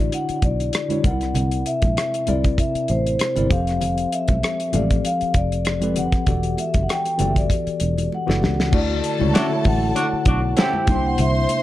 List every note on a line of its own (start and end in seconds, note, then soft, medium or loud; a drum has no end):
0.00 0.88 D3 medium
0.00 0.89 D4 medium
0.00 0.90 E4 medium
0.00 0.91 F#4 medium
0.00 0.92 C#5 medium
0.00 0.11 D5 medium
0.00 0.79 D5 medium
0.12 0.42 F#5 medium
0.12 closed hi-hat medium
0.12 muted conga soft
0.29 muted fingered electric bass stroke soft
0.29 closed hi-hat soft
0.42 0.70 B1 medium
0.42 1.01 D5 medium
0.42 kick medium
0.42 closed hi-hat medium
0.42 muted conga soft
0.60 closed hi-hat soft
0.73 cross-stick loud
0.73 closed hi-hat medium
0.88 1.04 D3 medium
0.88 1.04 D4 medium
0.88 1.05 E4 medium
0.88 1.05 F#4 medium
0.88 1.05 C#5 medium
0.88 closed hi-hat soft
0.88 high conga medium
1.02 1.32 C2 medium
1.02 2.15 C3 medium
1.02 2.15 C4 medium
1.02 1.11 D#4 medium
1.02 2.16 A#4 medium
1.02 2.16 D5 medium
1.02 1.69 F#5 medium
1.02 kick medium
1.02 closed hi-hat medium
1.02 low conga medium
1.11 2.19 E4 medium
1.21 cross-stick soft
1.21 closed hi-hat soft
1.35 1.63 C2 medium
1.35 closed hi-hat medium
1.35 muted conga soft
1.35 low conga medium
1.51 closed hi-hat soft
1.66 2.30 E5 medium
1.66 closed hi-hat medium
1.82 1.95 A#1 medium
1.82 kick medium
1.82 closed hi-hat soft
1.82 high conga medium
1.97 cross-stick loud
1.97 closed hi-hat medium
2.14 closed hi-hat soft
2.26 2.55 C2 medium
2.26 3.24 C3 medium
2.26 3.24 C4 medium
2.26 3.24 E4 medium
2.26 3.25 A#4 medium
2.26 3.25 D5 medium
2.26 2.57 D5 medium
2.26 closed hi-hat medium
2.26 high conga medium
2.26 low conga medium
2.44 kick medium
2.44 closed hi-hat soft
2.58 2.91 E5 medium
2.58 kick medium
2.58 closed hi-hat medium
2.58 muted conga soft
2.75 muted fingered electric bass stroke soft
2.75 closed hi-hat soft
2.88 3.17 A1 medium
2.88 3.53 C5 medium
2.88 closed hi-hat medium
2.88 muted conga soft
3.07 closed hi-hat soft
3.19 cross-stick loud
3.19 closed hi-hat medium
3.35 3.49 G1 medium
3.35 3.50 C3 medium
3.35 3.49 C4 medium
3.35 3.51 E4 medium
3.35 3.51 A#4 medium
3.35 3.52 D5 medium
3.35 closed hi-hat soft
3.35 high conga medium
3.49 4.05 F1 medium
3.49 4.61 F3 medium
3.49 4.62 C4 medium
3.49 4.62 G4 medium
3.49 4.62 A4 medium
3.49 4.63 C5 medium
3.49 4.14 F5 medium
3.49 kick medium
3.49 closed hi-hat medium
3.49 muted conga soft
3.49 low conga medium
3.67 cross-stick soft
3.67 closed hi-hat soft
3.81 closed hi-hat medium
3.81 muted conga soft
3.81 low conga medium
3.98 closed hi-hat soft
4.12 4.76 E5 medium
4.12 closed hi-hat medium
4.28 4.41 B1 medium
4.28 kick medium
4.28 closed hi-hat medium
4.28 high conga medium
4.43 cross-stick loud
4.43 closed hi-hat medium
4.60 closed hi-hat soft
4.72 5.01 A1 medium
4.72 5.70 F3 medium
4.72 5.70 C4 medium
4.72 5.71 G4 medium
4.72 5.71 A4 medium
4.72 5.06 D5 medium
4.72 5.71 F5 medium
4.72 closed hi-hat medium
4.72 muted conga soft
4.72 high conga medium
4.72 low conga medium
4.90 kick medium
4.90 closed hi-hat medium
5.04 5.37 F5 medium
5.04 closed hi-hat medium
5.04 muted conga soft
5.21 muted fingered electric bass stroke soft
5.21 closed hi-hat soft
5.34 6.09 F1 medium
5.34 5.99 D5 medium
5.34 kick medium
5.34 closed hi-hat medium
5.34 muted conga soft
5.52 closed hi-hat soft
5.65 cross-stick medium
5.65 closed hi-hat medium
5.65 muted conga soft
5.81 6.22 F3 medium
5.81 6.22 C4 medium
5.81 6.23 G4 medium
5.81 6.23 A4 medium
5.81 6.24 B4 medium
5.81 closed hi-hat soft
5.81 high conga medium
5.96 6.60 F#5 medium
5.96 closed hi-hat medium
5.96 muted conga soft
5.96 low conga medium
6.12 kick medium
6.12 cross-stick soft
6.12 closed hi-hat soft
6.26 6.55 E1 medium
6.26 7.10 E3 medium
6.26 7.10 B3 medium
6.26 7.11 F#4 medium
6.26 7.11 G4 medium
6.26 7.11 A4 medium
6.26 7.11 D5 medium
6.26 kick loud
6.26 closed hi-hat medium
6.26 low conga medium
6.43 closed hi-hat soft
6.58 6.84 E5 medium
6.58 closed hi-hat medium
6.58 muted conga soft
6.74 6.87 F#1 medium
6.74 kick medium
6.74 closed hi-hat medium
6.74 high conga medium
6.83 6.89 F#5 medium
6.89 7.31 G5 medium
6.89 cross-stick loud
6.89 closed hi-hat medium
7.05 closed hi-hat soft
7.18 7.47 F#1 medium
7.18 8.15 E3 medium
7.18 8.16 B3 medium
7.18 8.16 F#4 medium
7.18 8.16 G4 medium
7.18 8.17 A4 medium
7.18 8.17 D5 medium
7.18 closed hi-hat medium
7.18 muted conga soft
7.18 high conga medium
7.18 low conga medium
7.28 7.36 E5 medium
7.36 8.08 D5 medium
7.36 kick medium
7.36 closed hi-hat medium
7.50 kick medium
7.50 closed hi-hat medium
7.67 muted fingered electric bass stroke soft
7.67 closed hi-hat soft
7.80 8.08 E1 medium
7.80 closed hi-hat medium
7.80 muted conga soft
7.98 closed hi-hat soft
7.98 high conga soft
8.12 8.76 F#5 medium
8.12 muted conga soft
8.26 8.44 F#1 medium
8.26 8.68 E3 medium
8.26 8.68 B3 medium
8.26 8.68 F#4 medium
8.26 8.69 G4 medium
8.26 8.69 A4 medium
8.26 8.69 D5 medium
8.26 snare medium
8.26 high conga medium
8.43 8.70 C#2 medium
8.43 snare medium
8.43 muted conga soft
8.43 low conga medium
8.60 snare medium
8.71 9.00 D2 loud
8.71 9.14 D3 medium
8.71 9.15 A3 medium
8.71 9.15 E4 medium
8.71 9.15 F#4 medium
8.71 10.53 A4 medium
8.71 9.16 D5 medium
8.71 9.31 D5 medium
8.71 10.53 A5 medium
8.71 kick loud
8.71 crash medium
8.71 muted conga soft
8.71 low conga medium
9.04 closed hi-hat medium
9.19 9.33 C#2 medium
9.19 9.47 D3 medium
9.19 9.47 A3 medium
9.19 9.47 E4 medium
9.19 9.48 F#4 medium
9.19 9.48 C#5 medium
9.19 high conga medium
9.34 9.45 F#3 medium
9.34 9.49 C#4 medium
9.34 9.45 D4 medium
9.34 9.45 F#4 medium
9.34 9.50 F#4 medium
9.34 9.50 A4 medium
9.34 9.64 E5 medium
9.34 snare loud
9.34 closed hi-hat medium
9.34 muted conga soft
9.49 10.59 D3 medium
9.49 10.60 A3 medium
9.49 10.60 E4 medium
9.49 10.60 F#4 medium
9.49 10.61 C#5 medium
9.64 9.92 A1 loud
9.64 10.61 F#5 medium
9.64 kick medium
9.64 open hi-hat medium
9.64 high conga medium
9.64 low conga medium
9.95 10.06 F#3 medium
9.95 10.06 D4 medium
9.95 10.06 F#4 medium
9.95 closed hi-hat medium
9.95 muted conga soft
10.13 muted fingered electric bass stroke soft
10.25 10.53 B1 medium
10.25 10.41 F#3 medium
10.25 10.41 D4 medium
10.25 10.41 F#4 medium
10.25 kick medium
10.25 closed hi-hat medium
10.57 11.02 C4 medium
10.57 10.72 C#4 medium
10.57 11.02 E4 medium
10.57 10.72 F#4 medium
10.57 11.02 G4 medium
10.57 10.73 A4 medium
10.57 11.07 G5 medium
10.57 snare loud
10.57 closed hi-hat medium
10.57 muted conga soft
10.73 high conga medium
10.86 11.15 C2 loud
10.86 11.56 C3 medium
10.86 11.57 A#3 medium
10.86 11.57 D4 medium
10.86 10.95 D#4 medium
10.86 11.63 C5 medium
10.86 11.58 C5 medium
10.86 11.63 C6 loud
10.86 kick loud
10.86 closed hi-hat medium
10.86 muted conga soft
10.86 low conga medium
10.95 11.61 E4 medium
11.06 11.20 F#5 medium
11.18 11.46 C2 medium
11.18 11.63 E5 medium
11.18 closed hi-hat medium
11.18 low conga medium
11.49 closed hi-hat medium
11.49 muted conga soft